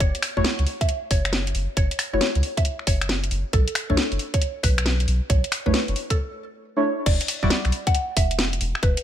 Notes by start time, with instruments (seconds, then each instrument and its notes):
0.00 sub bass F#1, synth pluck C#5, kick, closed hi-hat
0.15 closed hi-hat
0.22 finger snap, open hi-hat
0.37 sub bass F#1, synth stab A3 E4 F#4 C#5, synth pluck C#5, kick
0.44 snare
0.59 sub bass C#2, closed hi-hat
0.67 open hi-hat
0.81 synth pluck E5, kick, closed hi-hat
0.89 closed hi-hat
1.11 sub bass F#1, synth pluck C#5, kick, open hi-hat
1.25 finger snap, closed hi-hat
1.33 snare
1.47 closed hi-hat
1.55 sub bass F#1, open hi-hat
1.77 sub bass F#1, synth pluck C#5, kick, closed hi-hat
1.91 closed hi-hat
1.99 finger snap, open hi-hat
2.13 sub bass F#1, synth stab A3 E4 F#4 C#5, synth pluck C#5
2.21 snare
2.35 sub bass C#2, closed hi-hat
2.43 open hi-hat
2.57 synth pluck E5, kick, closed hi-hat
2.65 closed hi-hat
2.79 finger snap
2.87 sub bass F#1, synth pluck C#5, kick, open hi-hat
3.01 finger snap, closed hi-hat
3.09 snare
3.24 closed hi-hat
3.31 sub bass F#1, open hi-hat
3.53 sub bass B1, synth pluck A4, kick, closed hi-hat
3.68 closed hi-hat
3.75 finger snap, open hi-hat
3.90 sub bass B1, synth stab A3 D4 E4 C#5, synth pluck A4, kick
3.97 snare
4.12 sub bass F#1, closed hi-hat
4.19 open hi-hat
4.34 synth pluck C#5, kick, closed hi-hat
4.42 closed hi-hat
4.63 sub bass B1, synth pluck B4, kick, open hi-hat
4.78 finger snap, closed hi-hat
4.86 snare
5.00 closed hi-hat
5.08 sub bass B1, open hi-hat
5.30 sub bass B1, synth pluck C#5, kick, closed hi-hat
5.44 closed hi-hat
5.52 finger snap, open hi-hat
5.66 sub bass B1, synth stab A3 D4 E4 C#5, synth pluck B4, kick
5.74 snare
5.88 sub bass F#1, closed hi-hat
5.96 open hi-hat
6.10 synth pluck A4, kick, closed hi-hat
6.77 synth stab A3 D4 E4 C#5
7.06 sub bass E1, synth pluck D5, kick, closed hi-hat, crash
7.21 closed hi-hat
7.28 open hi-hat
7.43 sub bass E1, synth stab G3 E4 F#4 D5, synth pluck D5, kick
7.50 snare
7.65 sub bass B1, finger snap, closed hi-hat
7.72 open hi-hat
7.87 synth pluck F#5, kick, closed hi-hat
7.95 closed hi-hat
8.17 sub bass E1, synth pluck E5, kick, open hi-hat
8.31 closed hi-hat
8.39 snare
8.53 closed hi-hat
8.61 sub bass E1, open hi-hat
8.75 finger snap
8.83 sub bass E1, synth pluck B4, kick, closed hi-hat
8.97 closed hi-hat